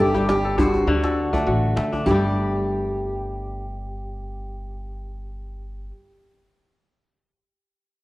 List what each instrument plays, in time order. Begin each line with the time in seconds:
Already playing: upright bass G1, kora G2 C4 E4 E5
0.00 steel-string acoustic guitar G4, kora D5
0.14 kora G3 G4, djembe slap, djembe tone
0.29 steel-string acoustic guitar G4, djembe slap
0.45 kora A4
0.58 kora G2 C5, steel-string acoustic guitar F#4, djembe bass
0.74 djembe tone
0.87 upright bass D2, kora D3 F#4, djembe slap
1.04 kora A4, djembe slap
1.33 kora A3 D4, djembe tone, djembe bass
1.47 upright bass A1, kora F#4, djembe slap
1.64 djembe slap
1.77 upright bass D3, kora A3, djembe slap
1.93 kora D4, djembe tone
2.06 upright bass G1, kora G2, steel-string acoustic guitar G4, djembe bass
2.11 kora G3 G4